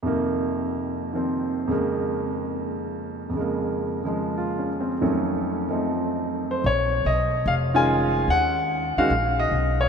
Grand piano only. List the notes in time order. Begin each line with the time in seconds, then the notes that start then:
0.03 F2 C3 D#3
0.07 A#3
1.13 D#3 F3 C4
1.67 F2 C#3 G#3
1.72 A#3
3.30 F2 C#3
3.37 G#3 A#3
4.03 C#3 F3 G#3
4.38 F4
4.59 C#4
4.80 C4
5.01 F2 D#3 F#3 A3 C#4
5.69 F3 A3 C4 D#4
6.51 C5
6.66 C#5
7.06 D#5
7.48 F5
7.74 D#3 G#3 C#4 F4 G#5
8.30 F#5
8.98 D#3 G#3 C#4 F#4 F5
9.39 D#5
9.81 C#5